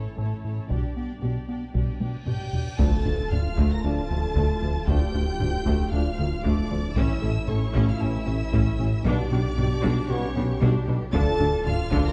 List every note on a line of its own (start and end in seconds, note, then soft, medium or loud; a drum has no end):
0.00 0.67 E3 soft
0.00 0.18 A3 soft
0.00 0.71 C#4 medium
0.00 0.17 E4 soft
0.00 0.18 A4 soft
0.00 0.18 C#5 soft
0.18 0.62 A1 soft
0.18 0.62 A2 medium
0.18 0.34 A2 medium
0.18 0.43 A3 soft
0.18 0.43 E4 soft
0.18 0.34 A4 soft
0.18 0.43 A4 soft
0.18 0.44 C#5 soft
0.44 0.60 A2 medium
0.44 0.70 A3 soft
0.44 0.70 E4 soft
0.44 0.70 A4 soft
0.44 0.70 C#5 soft
0.69 1.14 B1 medium
0.69 1.14 B2 soft
0.69 0.86 B2 medium
0.69 0.86 G3 medium
0.69 2.27 G3 soft
0.69 0.96 D4 soft
0.69 2.28 D4 soft
0.69 0.94 G4 soft
0.69 0.94 D5 soft
0.69 taiko medium
0.69 cymbal swell soft
0.95 1.12 B3 soft
0.95 1.22 D4 soft
0.95 1.20 G4 soft
0.95 1.20 D5 soft
1.21 1.66 B1 soft
1.21 1.66 B2 soft
1.21 1.38 B2 soft
1.21 1.47 D4 soft
1.21 1.47 G4 soft
1.21 1.38 G4 medium
1.21 1.47 D5 soft
1.48 1.64 B3 soft
1.48 1.74 D4 soft
1.48 1.73 G4 soft
1.48 1.73 D5 soft
1.74 2.19 B1 soft
1.74 1.91 B2 medium
1.74 2.19 B2 medium
1.74 1.90 G3 medium
1.74 2.00 D4 soft
1.74 2.00 G4 soft
1.74 1.99 D5 soft
1.74 taiko medium
2.00 2.16 B2 soft
2.00 2.16 B3 soft
2.00 2.27 D4 soft
2.00 2.25 G4 soft
2.00 2.25 D5 soft
2.00 taiko high medium
2.26 2.71 B1 soft
2.26 2.43 B2 medium
2.26 2.71 B2 soft
2.26 2.53 D4 soft
2.26 2.52 G4 soft
2.26 2.43 G4 medium
2.26 2.66 G4 medium
2.26 2.51 D5 soft
2.26 2.76 G5 medium
2.26 2.76 G6 medium
2.26 taiko low-mid medium
2.52 2.69 B2 soft
2.52 2.80 D4 soft
2.52 2.79 G4 soft
2.52 2.79 D5 medium
2.52 taiko low medium
2.78 6.98 D1 medium
2.78 2.87 D2 medium
2.78 2.95 D2 loud
2.78 2.88 D2 medium
2.78 2.90 D2 medium
2.78 2.95 D3 medium
2.78 2.97 F3 medium
2.78 3.04 A3 medium
2.78 2.97 D4 medium
2.78 6.93 F4 medium
2.78 3.31 A4 medium
2.78 3.31 A5 medium
2.78 3.30 A6 medium
2.78 taiko loud
2.78 impact medium
3.05 3.21 D2 medium
3.05 3.14 D2 medium
3.05 3.16 D2 medium
3.05 3.14 D2 medium
3.05 3.14 A3 medium
3.05 3.21 D4 medium
3.05 taiko low-mid medium
3.30 3.39 D2 medium
3.30 3.48 D2 medium
3.30 3.40 D2 medium
3.30 3.43 D2 medium
3.30 3.40 A3 medium
3.30 3.48 D4 medium
3.30 3.72 F4 medium
3.30 3.70 F5 medium
3.30 3.70 F6 medium
3.30 taiko low-mid medium
3.57 3.66 D2 medium
3.57 3.73 D2 loud
3.57 3.66 D2 medium
3.57 3.69 D2 medium
3.57 3.73 D3 medium
3.57 3.82 A3 medium
3.57 taiko medium
3.71 3.84 A#4 medium
3.71 3.84 A#5 medium
3.71 3.84 A#6 loud
3.83 4.00 D2 medium
3.83 3.95 D2 medium
3.83 3.93 D2 medium
3.83 4.03 F3 medium
3.83 3.92 A3 medium
3.83 4.00 D4 medium
3.83 4.03 D4 medium
3.83 4.87 A4 medium
3.83 4.86 A5 loud
3.83 4.88 A6 medium
4.10 4.26 D2 medium
4.10 4.21 D2 medium
4.10 4.19 D2 medium
4.10 4.26 F3 medium
4.10 4.19 A3 medium
4.35 4.44 D2 medium
4.35 4.47 D2 medium
4.35 4.52 D2 loud
4.35 4.45 D2 medium
4.35 4.52 D3 loud
4.35 4.61 A3 medium
4.35 taiko medium
4.62 4.70 D2 medium
4.62 4.73 D2 medium
4.62 4.78 D2 medium
4.62 4.71 D2 medium
4.62 4.78 F3 medium
4.62 4.71 A3 medium
4.87 4.95 D2 medium
4.87 4.99 D2 medium
4.87 5.04 D2 loud
4.87 4.97 D2 medium
4.87 5.04 D3 loud
4.87 5.07 F3 medium
4.87 5.13 A3 medium
4.87 5.07 D4 medium
4.87 5.93 G4 medium
4.87 5.90 G5 loud
4.87 5.92 G6 loud
4.87 taiko loud
5.14 5.22 D2 medium
5.14 5.30 D2 medium
5.14 5.25 D2 medium
5.14 5.23 D2 medium
5.14 5.23 A3 medium
5.14 5.30 D4 medium
5.14 taiko low-mid medium
5.39 5.47 D2 medium
5.39 5.51 D2 medium
5.39 5.49 D2 medium
5.39 5.57 D2 medium
5.39 5.49 A3 medium
5.39 5.56 D4 medium
5.39 taiko low-mid medium
5.65 5.73 D2 medium
5.65 5.77 D2 medium
5.65 5.75 D2 medium
5.65 5.82 D2 loud
5.65 5.82 D3 loud
5.65 5.91 A3 medium
5.65 taiko medium
5.90 6.00 D2 medium
5.90 6.08 D2 medium
5.90 6.01 D2 medium
5.90 6.03 D2 medium
5.90 6.11 F3 medium
5.90 6.01 A3 medium
5.90 6.10 D4 medium
5.90 6.08 D4 medium
5.90 6.44 F4 medium
5.90 6.44 F5 medium
5.90 6.43 F6 medium
6.18 6.26 D2 medium
6.18 6.27 D2 medium
6.18 6.29 D2 medium
6.18 6.35 D2 medium
6.18 6.34 F3 medium
6.18 6.27 A3 medium
6.43 6.52 D2 medium
6.43 6.55 D2 medium
6.43 6.53 D2 medium
6.43 6.61 D2 loud
6.43 6.60 D3 loud
6.43 6.69 A3 medium
6.43 6.95 D4 medium
6.43 6.97 D5 medium
6.43 6.95 D6 loud
6.43 taiko medium
6.70 6.78 D2 medium
6.70 6.79 D2 medium
6.70 6.81 D2 medium
6.70 6.87 D2 medium
6.70 6.87 F3 medium
6.70 6.78 A3 medium
6.95 7.04 A1 loud
6.95 7.07 A1 medium
6.95 9.07 A1 medium
6.95 7.12 A2 medium
6.95 7.05 A2 medium
6.95 7.16 E3 medium
6.95 7.13 A3 loud
6.95 7.21 C#4 loud
6.95 7.15 C#4 medium
6.95 7.48 E4 medium
6.95 9.06 E4 medium
6.95 7.49 E5 medium
6.95 7.48 E6 loud
6.95 taiko loud
7.22 7.30 A1 medium
7.22 7.33 A1 medium
7.22 7.39 A2 medium
7.22 7.32 A2 medium
7.22 7.31 C#4 medium
7.22 7.38 A4 medium
7.22 taiko low-mid medium
7.48 7.56 A1 medium
7.48 7.60 A1 medium
7.48 7.58 A2 medium
7.48 7.65 A2 medium
7.48 7.88 C#4 medium
7.48 7.57 C#4 medium
7.48 7.65 A4 medium
7.48 7.87 C#5 medium
7.48 7.88 C#6 medium
7.48 taiko low-mid medium
7.74 7.82 A1 medium
7.74 7.86 A1 medium
7.74 7.84 A2 loud
7.74 7.91 A2 loud
7.74 7.90 A3 loud
7.74 7.99 C#4 loud
7.74 taiko medium
7.87 8.01 F4 medium
7.87 8.01 F5 medium
7.87 8.02 F6 medium
8.00 8.08 A1 medium
8.00 8.12 A1 medium
8.00 8.17 A2 medium
8.00 8.10 A2 medium
8.00 8.19 E3 medium
8.00 8.08 C#4 medium
8.00 8.19 C#4 medium
8.00 9.05 E4 medium
8.00 8.16 A4 medium
8.00 9.05 E5 medium
8.00 9.05 E6 loud
8.26 8.34 A1 medium
8.26 8.38 A1 medium
8.26 8.36 A2 medium
8.26 8.43 A2 medium
8.26 8.35 C#4 medium
8.26 8.43 C#4 medium
8.53 8.61 A1 medium
8.53 8.64 A1 loud
8.53 8.61 A2 medium
8.53 8.69 A2 loud
8.53 8.69 A3 loud
8.53 8.78 C#4 medium
8.53 taiko medium
8.79 8.89 A1 medium
8.79 8.87 A1 medium
8.79 8.95 A2 medium
8.79 8.87 A2 medium
8.79 8.87 C#4 medium
8.79 8.96 C#4 medium
9.04 9.15 B1 loud
9.04 11.15 B1 medium
9.04 9.13 B1 loud
9.04 9.13 B2 loud
9.04 9.21 B2 loud
9.04 9.24 G3 medium
9.04 9.22 G3 loud
9.04 9.24 B3 medium
9.04 10.10 D4 loud
9.04 9.30 D4 loud
9.04 11.10 G4 medium
9.04 10.10 D5 loud
9.04 10.07 D6 loud
9.04 taiko loud
9.30 9.41 B1 medium
9.30 9.40 B1 medium
9.30 9.39 B2 medium
9.30 9.48 B2 medium
9.30 9.40 D4 medium
9.30 9.48 G4 medium
9.30 taiko low-mid medium
9.57 9.67 B1 medium
9.57 9.65 B1 medium
9.57 9.65 B2 medium
9.57 9.74 B2 medium
9.57 9.65 D4 medium
9.57 9.74 G4 medium
9.57 taiko low-mid medium
9.83 9.91 B1 loud
9.83 9.94 B1 loud
9.83 9.91 B2 loud
9.83 10.00 B2 loud
9.83 10.00 G3 loud
9.83 10.08 D4 loud
9.83 taiko medium
10.09 10.20 B1 medium
10.09 10.18 B1 medium
10.09 10.17 B2 medium
10.09 10.26 B2 medium
10.09 10.28 G3 medium
10.09 10.28 B3 medium
10.09 10.63 C#4 medium
10.09 10.19 D4 medium
10.09 10.26 G4 medium
10.09 10.61 C#5 medium
10.09 10.62 C#6 loud
10.36 10.46 B1 medium
10.36 10.44 B1 medium
10.36 10.44 B2 medium
10.36 10.52 B2 medium
10.36 10.52 B3 medium
10.36 10.45 D4 medium
10.61 10.70 B1 loud
10.61 10.73 B1 loud
10.61 10.69 B2 loud
10.61 10.78 B2 loud
10.61 10.78 G3 loud
10.61 10.87 D4 loud
10.61 taiko medium
10.87 10.96 B1 medium
10.87 10.99 B1 medium
10.87 10.95 B2 medium
10.87 11.04 B2 medium
10.87 11.04 B3 medium
10.87 10.96 D4 medium
11.12 12.12 D1 medium
11.12 11.24 D2 medium
11.12 11.30 D2 loud
11.12 11.22 D2 loud
11.12 11.21 D3 loud
11.12 11.30 D3 loud
11.12 11.33 F3 loud
11.12 11.32 D4 medium
11.12 11.39 D4 medium
11.12 12.12 F4 medium
11.12 11.63 A4 loud
11.12 11.62 A5 loud
11.12 11.62 A6 loud
11.12 taiko loud
11.39 11.48 D2 medium
11.39 11.50 D2 medium
11.39 11.56 D2 medium
11.39 11.47 D3 medium
11.39 11.48 D4 medium
11.39 11.56 D4 medium
11.39 taiko low-mid medium
11.65 11.76 D2 medium
11.65 11.82 D2 medium
11.65 11.74 D2 medium
11.65 11.74 D3 medium
11.65 11.82 D4 medium
11.65 11.75 D4 medium
11.65 12.06 F4 loud
11.65 12.05 F5 loud
11.65 12.05 F6 loud
11.65 taiko low-mid medium
11.92 12.00 D2 loud
11.92 12.02 D2 loud
11.92 12.08 D2 loud
11.92 12.00 D3 loud
11.92 12.08 D3 loud
11.92 12.12 D4 loud
11.92 taiko medium
12.05 12.12 A#4 loud
12.05 12.12 A#5 loud
12.05 12.12 A#6 loud